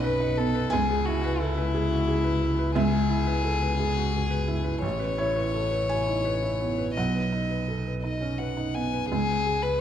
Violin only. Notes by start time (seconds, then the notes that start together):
0.03 B4
0.37 A4
0.72 G#4
1.05 F#4
1.39 E4
2.75 G#4
4.82 C#5
6.97 D#5
8.02 D#5
8.38 F#5
8.74 G#5
9.09 G#4
9.62 B4